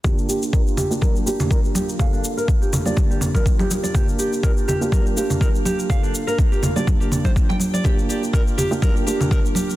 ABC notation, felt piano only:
X:1
M:4/4
L:1/16
Q:"Swing 16ths" 1/4=123
K:Gm
V:1 name="Felt piano"
[B,DFG]6- [B,DFG] [B,DFG]3 [B,DFG]6 | [B,DFA]6- [B,DFA] [B,DFG]8- [B,DFG] | [B,DFG]6- [B,DFG] [B,DFG]3 [B,DFG]6 | [B,DA]6- [B,DA] [B,DFG]8- [B,DFG] |
[B,DFG]6- [B,DFG] [B,DFG]3 [B,DFG]6 |]